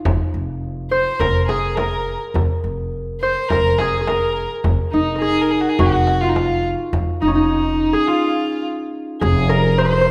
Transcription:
Already playing: D#4 F4 G#4
0.05 F1, frame drum
0.34 F1
0.91 C5
1.20 F1 A#4, frame drum
1.48 G#4, frame drum
1.76 A#4, frame drum
2.34 F1, frame drum
2.64 F1
3.21 C5
3.49 F1 A#4, frame drum
3.78 G#4, frame drum
4.01 G#4
4.07 A#4, frame drum
4.64 F1, frame drum
4.91 F1 D#4
5.15 A#4
5.21 G#4
5.41 A#4
5.51 G#4
5.60 F#4
5.69 G#4
5.79 F1 F#4, frame drum
6.07 frame drum
6.21 F4
6.29 D#4
6.36 F4, frame drum
6.93 F1, frame drum
7.21 F1 D#4
7.27 C#4
7.35 D#4
7.93 G#4
8.07 F4
9.21 F1 G#4, frame drum
9.49 A#4
9.78 C5
9.85 C5
9.92 C5
10.01 C5

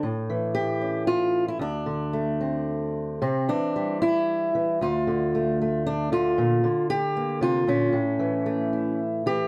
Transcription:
0.03 A2
0.30 E3
0.55 G4
0.81 C#4
1.07 F4
1.48 E4
1.59 D2 D4
1.86 D3
2.13 A3
2.41 C4
3.22 C3 C4
3.49 E3 D4
3.76 G3
4.02 E4
4.55 E3
4.81 D2 F4
5.07 D3
5.35 A3
5.62 A3
5.87 D4
6.12 D3 F4
6.38 A#2
6.64 D3
6.90 G4
7.17 A#3
7.41 C3 F4
7.67 A#2 C#4
7.93 A2
8.19 E3
8.46 A3
8.73 E4
9.26 E3 G4

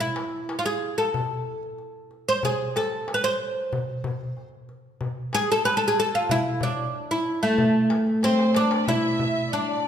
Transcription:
0.00 E4
0.16 darbuka tek
0.49 darbuka tek
0.59 F4
0.66 G#4
0.98 A4
1.14 darbuka dum
1.63 darbuka ka
1.78 darbuka ka
2.11 darbuka ka
2.29 C5
2.43 G#4, darbuka dum
2.76 A4, darbuka tek
3.08 darbuka tek
3.14 B4
3.24 C5
3.73 darbuka dum
4.04 darbuka dum
4.21 darbuka ka
4.37 darbuka ka
4.69 darbuka ka
5.01 darbuka dum
5.33 G#4, darbuka tek
5.52 A4
5.65 B4, darbuka tek
5.77 A4
5.88 G#4
6.00 A4
6.15 F4
6.29 E4, darbuka dum
6.61 D4, darbuka dum
6.94 darbuka ka
7.11 E4
7.26 darbuka ka
7.42 A3, darbuka ka
7.58 darbuka dum
7.90 darbuka tek
8.07 darbuka ka
8.23 C4 C5, darbuka tek
8.39 darbuka ka
8.55 D4 D5, darbuka tek
8.71 darbuka ka
8.88 E4 E5, darbuka dum
9.19 darbuka dum
9.52 D4 D5, darbuka ka

